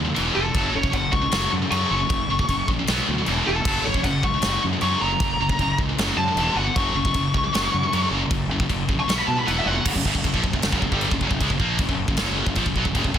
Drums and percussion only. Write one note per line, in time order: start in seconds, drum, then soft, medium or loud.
0.16 china medium
0.55 kick loud
0.55 china medium
0.83 kick medium
0.93 kick medium
0.93 china medium
1.13 kick medium
1.32 snare loud
1.32 china medium
1.72 china medium
2.10 kick loud
2.10 china medium
2.39 kick medium
2.49 kick medium
2.49 china medium
2.68 kick medium
2.87 snare loud
2.87 china medium
3.26 china medium
3.65 kick loud
3.65 china medium
3.65 crash medium
3.94 kick medium
4.04 kick medium
4.04 china medium
4.23 kick medium
4.42 snare loud
4.42 china medium
4.81 china medium
5.20 kick loud
5.20 china medium
5.49 kick loud
5.59 kick medium
5.59 china medium
5.78 kick medium
5.98 snare loud
5.98 china medium
6.37 china medium
6.76 kick loud
6.76 china medium
7.05 kick medium
7.14 kick medium
7.14 china medium
7.34 kick medium
7.54 snare loud
7.54 china medium
7.93 china medium
8.31 kick loud
8.31 china medium
8.60 kick loud
8.70 kick medium
8.70 china medium
8.89 kick medium
9.09 snare loud
9.09 china medium
9.48 china medium
9.86 kick loud
9.86 crash loud
9.86 china medium
9.95 kick loud
10.05 kick medium
10.15 kick medium
10.24 kick loud
10.24 china medium
10.34 kick loud
10.44 kick medium
10.53 kick loud
10.62 snare loud
10.62 china medium
10.72 kick loud
10.82 kick medium
10.92 kick medium
11.01 china medium
11.11 kick medium
11.21 kick medium
11.31 kick medium
11.40 kick loud
11.40 china medium
11.50 kick medium
11.60 kick medium
11.79 kick loud
11.79 china medium
11.89 kick medium
12.08 kick loud
12.17 snare loud
12.17 china medium
12.46 kick loud
12.55 kick loud
12.55 china medium
12.66 kick medium
12.76 kick medium
12.85 kick medium
12.95 kick loud
12.95 china medium
13.04 kick medium
13.14 kick medium